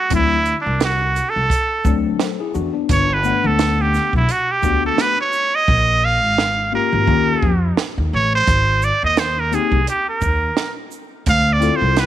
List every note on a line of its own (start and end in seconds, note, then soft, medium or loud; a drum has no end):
0.00 0.12 F#4 medium
0.10 0.52 D2 loud
0.10 0.36 F#3 medium
0.10 0.36 A3 medium
0.10 0.37 C4 medium
0.10 0.37 E4 medium
0.10 kick loud
0.10 closed hi-hat loud
0.15 0.56 E4 medium
0.46 closed hi-hat soft
0.46 shaker soft
0.61 0.81 D4 medium
0.66 1.18 C2 medium
0.80 1.31 F#4 medium
0.80 snare loud
0.80 closed hi-hat medium
1.16 closed hi-hat soft
1.16 shaker soft
1.30 1.98 A4 medium
1.36 1.47 C2 medium
1.50 kick medium
1.50 closed hi-hat medium
1.85 2.11 D2 medium
1.85 2.35 F#3 medium
1.85 2.36 A3 medium
1.85 2.20 C4 medium
1.85 2.21 D4 medium
1.85 kick medium
1.85 shaker medium
2.20 2.39 A4 medium
2.20 2.39 C5 medium
2.20 snare loud
2.20 closed hi-hat medium
2.40 2.54 E4 medium
2.40 2.54 G#4 medium
2.54 2.70 E2 medium
2.54 2.72 D4 medium
2.54 2.73 F#4 medium
2.54 shaker soft
2.74 3.07 B3 medium
2.74 3.07 D4 medium
2.89 3.31 G1 loud
2.89 3.15 C#5 medium
2.89 kick loud
2.89 closed hi-hat loud
3.13 3.48 B4 medium
3.23 4.22 A3 medium
3.23 4.22 B3 medium
3.23 4.23 D4 medium
3.23 4.24 F#5 medium
3.23 shaker soft
3.44 3.97 D2 medium
3.44 3.83 A4 medium
3.59 snare loud
3.59 closed hi-hat medium
3.81 4.15 G4 medium
3.94 snare soft
3.94 shaker soft
4.13 4.25 B1 medium
4.13 4.33 E4 medium
4.13 kick medium
4.29 4.53 F#4 medium
4.29 closed hi-hat medium
4.51 4.85 G4 medium
4.62 4.90 D2 medium
4.62 5.14 A3 medium
4.62 5.14 B3 medium
4.62 5.15 D4 medium
4.62 5.15 F#4 medium
4.62 kick loud
4.62 shaker medium
4.86 5.03 A4 medium
4.98 5.20 B4 loud
4.98 snare loud
4.98 closed hi-hat medium
5.21 5.57 C#5 loud
5.33 shaker soft
5.55 6.06 D#5 loud
5.68 6.23 A#1 medium
5.68 kick loud
6.05 6.74 F5 loud
6.23 6.75 G#1 medium
6.38 snare loud
6.72 7.06 A#3 medium
6.72 7.07 C#4 medium
6.72 7.08 F4 medium
6.72 7.09 G4 medium
6.72 7.75 A#4 medium
6.93 7.04 G#1 medium
7.07 7.34 D#2 loud
7.07 7.50 A#3 medium
7.07 7.51 C#4 medium
7.07 7.51 F4 medium
7.07 7.52 G4 medium
7.07 kick medium
7.43 7.69 F2 medium
7.43 kick loud
7.77 snare loud
7.98 8.09 D#2 medium
8.13 8.39 A1 medium
8.13 8.32 C#5 medium
8.35 8.86 C5 loud
8.47 8.89 G#1 medium
8.47 kick loud
8.47 closed hi-hat medium
8.82 9.03 D5 medium
8.82 closed hi-hat soft
8.82 shaker soft
9.03 9.55 D#2 medium
9.03 9.21 D#5 loud
9.17 9.41 C5 medium
9.17 snare loud
9.17 closed hi-hat medium
9.40 9.56 A#4 medium
9.52 9.78 A#3 medium
9.52 9.78 C4 medium
9.52 9.79 D#4 medium
9.52 9.79 G4 medium
9.52 9.88 G#4 medium
9.52 closed hi-hat soft
9.52 shaker soft
9.72 9.83 C2 medium
9.72 kick medium
9.87 10.07 G4 medium
9.87 closed hi-hat medium
10.09 10.74 A#4 medium
10.21 10.48 D#2 medium
10.21 kick loud
10.21 shaker medium
10.57 snare loud
10.57 closed hi-hat medium
10.91 shaker soft
11.26 11.68 D2 loud
11.26 11.54 F5 loud
11.26 kick loud
11.26 closed hi-hat medium
11.53 11.77 D5 medium
11.60 12.06 C4 medium
11.60 12.06 E4 medium
11.60 12.06 F4 medium
11.60 12.06 A4 medium
11.60 closed hi-hat soft
11.60 shaker soft
11.76 12.01 C5 medium
11.81 12.06 C2 medium
11.96 12.06 B4 medium
11.96 snare loud
11.96 closed hi-hat medium